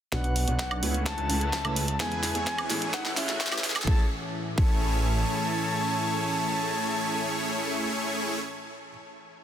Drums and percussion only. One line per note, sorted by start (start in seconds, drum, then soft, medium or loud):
0.12 kick loud
0.12 snare soft
0.12 closed hi-hat medium
0.24 closed hi-hat soft
0.36 open hi-hat loud
0.48 closed hi-hat medium
0.59 kick loud
0.59 snare medium
0.59 closed hi-hat medium
0.71 closed hi-hat soft
0.71 high woodblock medium
0.83 open hi-hat loud
0.94 closed hi-hat medium
1.06 kick loud
1.06 snare medium
1.06 closed hi-hat medium
1.18 closed hi-hat soft
1.30 open hi-hat loud
1.41 closed hi-hat soft
1.53 kick loud
1.53 snare medium
1.53 closed hi-hat medium
1.65 closed hi-hat soft
1.65 high woodblock medium
1.76 open hi-hat loud
1.88 closed hi-hat medium
2.00 kick loud
2.00 snare medium
2.00 closed hi-hat medium
2.12 closed hi-hat soft
2.23 snare medium
2.23 open hi-hat loud
2.35 closed hi-hat soft
2.47 kick loud
2.47 snare medium
2.47 closed hi-hat medium
2.58 closed hi-hat soft
2.58 high woodblock medium
2.70 snare medium
2.70 open hi-hat loud
2.82 closed hi-hat medium
2.94 kick loud
2.94 snare medium
2.94 closed hi-hat medium
3.05 snare medium
3.05 closed hi-hat soft
3.17 snare loud
3.17 open hi-hat loud
3.29 snare medium
3.29 closed hi-hat soft
3.40 kick loud
3.40 snare loud
3.40 closed hi-hat medium
3.46 snare loud
3.52 snare medium
3.52 closed hi-hat soft
3.52 high woodblock medium
3.58 snare medium
3.64 snare loud
3.64 open hi-hat loud
3.70 snare loud
3.76 snare medium
3.76 closed hi-hat medium
3.76 high woodblock medium
3.82 snare loud
3.87 kick loud
4.58 kick loud